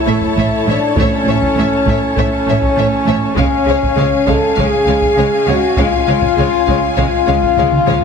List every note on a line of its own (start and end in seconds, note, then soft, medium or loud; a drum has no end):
0.00 0.67 E4 medium
0.00 3.34 E4 medium
0.00 3.34 A4 medium
0.00 3.34 C#5 medium
0.00 3.34 A5 medium
0.06 0.15 A1 soft
0.06 0.15 A2 soft
0.06 0.14 A3 soft
0.06 0.14 C#5 soft
0.06 0.16 E5 soft
0.21 taiko medium
0.37 0.45 A1 soft
0.37 0.45 A2 medium
0.37 0.45 A3 soft
0.37 0.48 C#5 soft
0.37 0.46 E5 soft
0.66 0.75 A1 soft
0.66 0.74 A2 soft
0.66 0.74 A3 soft
0.66 0.97 D4 medium
0.66 0.77 E5 soft
0.70 0.78 C#5 soft
0.96 1.05 A1 medium
0.96 1.05 A2 medium
0.96 1.04 A3 soft
0.96 2.15 C#4 medium
0.96 1.08 C#5 medium
0.96 1.08 E5 soft
0.96 taiko medium
1.25 1.35 A1 medium
1.25 1.35 A2 soft
1.25 1.33 A3 soft
1.25 1.36 C#5 soft
1.29 1.37 E5 soft
1.41 taiko medium
1.56 1.65 A1 medium
1.56 1.66 A2 soft
1.56 1.64 A3 soft
1.56 1.67 C#5 soft
1.56 1.67 E5 soft
1.86 1.95 A1 soft
1.86 1.95 A2 soft
1.86 1.94 A3 soft
1.86 1.97 E5 soft
1.86 taiko medium
1.91 1.99 C#5 soft
2.16 2.26 A1 medium
2.16 2.25 A2 medium
2.16 2.24 A3 soft
2.16 3.35 C#4 medium
2.16 2.26 C#5 soft
2.16 2.26 E5 soft
2.16 taiko medium
2.47 2.56 A1 medium
2.47 2.56 A2 medium
2.47 2.55 A3 soft
2.47 2.58 C#5 soft
2.47 2.57 E5 medium
2.62 taiko medium
2.76 2.85 A1 medium
2.76 2.86 A2 medium
2.76 2.84 A3 soft
2.76 2.87 C#5 soft
2.76 2.86 E5 soft
3.05 3.15 A1 medium
3.05 3.16 A2 medium
3.05 3.13 A3 soft
3.05 3.16 C#5 medium
3.05 3.16 E5 soft
3.36 3.45 C#2 medium
3.36 3.46 C#3 medium
3.36 3.44 G#3 medium
3.36 4.26 C#4 medium
3.36 8.04 C#4 medium
3.36 3.46 C#5 medium
3.36 3.46 F5 medium
3.36 8.04 F5 medium
3.36 8.04 G#5 medium
3.36 taiko medium
3.65 3.75 C#2 medium
3.65 3.75 C#3 soft
3.65 3.73 G#3 medium
3.65 3.77 C#5 medium
3.65 3.76 F5 soft
3.82 taiko medium
3.96 4.05 C#2 medium
3.96 4.04 C#3 medium
3.96 4.04 G#3 medium
3.96 4.07 C#5 medium
3.96 4.05 F5 soft
4.27 4.36 C#2 medium
4.27 4.36 C#3 medium
4.27 4.35 G#3 medium
4.27 4.57 A4 medium
4.27 4.35 C#5 soft
4.27 4.35 F5 soft
4.27 taiko medium
4.55 4.65 C#2 medium
4.55 4.65 C#3 medium
4.55 4.66 G#3 soft
4.55 5.47 G#4 medium
4.55 4.66 C#5 soft
4.55 4.63 F5 medium
4.55 taiko medium
4.87 4.95 C#2 medium
4.87 4.96 C#3 medium
4.87 4.96 G#3 medium
4.87 4.96 C#5 soft
4.87 4.95 F5 medium
5.01 taiko medium
5.17 5.26 C#2 medium
5.17 5.25 C#3 medium
5.17 5.26 G#3 medium
5.17 5.26 C#5 medium
5.17 5.27 F5 medium
5.46 5.56 C#2 medium
5.46 5.55 C#3 medium
5.46 5.57 G#3 medium
5.46 5.78 F#4 medium
5.46 5.56 C#5 medium
5.46 5.54 F5 soft
5.76 5.86 C#2 medium
5.76 5.86 C#3 medium
5.76 5.87 G#3 medium
5.76 6.81 F4 loud
5.76 5.86 C#5 medium
5.76 5.85 F5 medium
5.76 taiko medium
6.07 6.15 C#2 medium
6.07 6.15 C#3 soft
6.07 6.16 G#3 medium
6.07 6.17 C#5 medium
6.07 6.16 F5 soft
6.21 taiko medium
6.37 6.46 C#2 medium
6.37 6.45 C#3 medium
6.37 6.45 G#3 medium
6.37 6.47 C#5 medium
6.37 6.46 F5 soft
6.67 6.76 C#2 medium
6.67 6.75 C#3 medium
6.67 6.76 G#3 medium
6.67 6.78 C#5 medium
6.67 6.75 F5 medium
6.67 taiko medium
6.95 7.06 C#2 medium
6.95 7.06 C#3 medium
6.95 7.05 G#3 medium
6.95 8.04 F4 medium
6.95 7.03 C#5 medium
6.95 7.06 F5 medium
6.95 taiko medium
7.26 7.36 C#2 medium
7.26 7.36 C#3 medium
7.26 7.35 G#3 medium
7.26 7.34 C#5 soft
7.26 7.36 F5 medium
7.42 taiko medium
7.57 7.67 C#2 medium
7.57 7.66 C#3 medium
7.57 7.66 G#3 medium
7.57 7.65 C#5 medium
7.57 7.67 F5 medium
7.57 taiko mid medium
7.72 taiko mid medium
7.86 7.96 C#2 medium
7.86 7.96 C#3 medium
7.86 7.95 G#3 medium
7.86 7.94 C#5 medium
7.86 7.98 F5 medium
7.86 taiko mid medium